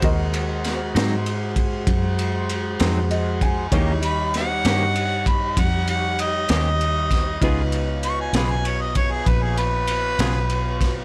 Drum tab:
RD |xxxxxxxxxxxx|xxxxxxxxxxxx|xxxxxxxxxxxx|
SD |--oo-----o--|--oo-----o-o|---o-----o-o|
BD |o----oo----o|o----oo----o|o----oo----o|